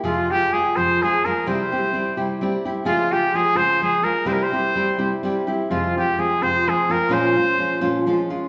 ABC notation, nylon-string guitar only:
X:1
M:6/8
L:1/8
Q:3/8=85
K:Fm
V:1 name="Nylon-string guitar"
[F,,C,F,A,FA] [F,A,FA] [F,A,FA] [F,,C,F,A,FA] [F,A,FA] [F,A,FA] | [C,G,C=EG] [CEG] [G,CEG] [C,G,CEG] [G,CEG] [CEG] | [D,F,A,FA] [A,FA] [F,A,FA] [D,F,A,FA] [F,A,FA] [A,FA] | [C,G,C=EG] [CEG] [G,CEG] [C,G,CEG] [G,CEG] [CEG] |
[F,,C,F,A,CF] [F,A,CF] [F,A,CF] [F,,C,F,A,CF] [F,A,CF] [F,A,CF] | [B,,F,A,DF] [A,F] [F,A,DF] [B,,F,A,DF] [F,A,DF] [A,DF] |]